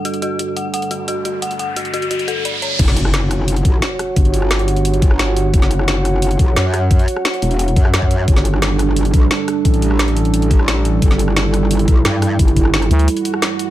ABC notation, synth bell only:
X:1
M:4/4
L:1/8
Q:1/4=175
K:F#phr
V:1 name="Synth bell"
F F F f f F F F | f f F F F A d c | z8 | z8 |
z8 | z8 | z8 | z8 |
z8 | z8 |]